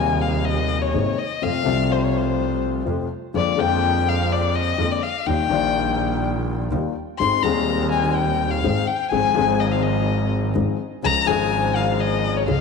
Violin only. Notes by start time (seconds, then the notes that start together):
Already playing: G#5
0.21 F5
0.45 D#5
0.82 C#5
1.18 D#5
1.43 F5
1.92 C5
2.04 C#5
2.17 C5
3.36 D5
3.60 G5
4.09 F5
4.32 D5
4.55 D#5
4.92 D5
5.02 F5
5.26 G5
7.19 C6
7.43 A#5
7.92 G#5
8.15 G5
8.51 F5
8.87 G5
9.11 G#5
9.60 D#5
9.71 F5
9.83 D#5
11.04 A#5
11.27 G#5
11.75 F5
12.00 D#5
12.37 C#5
12.49 F5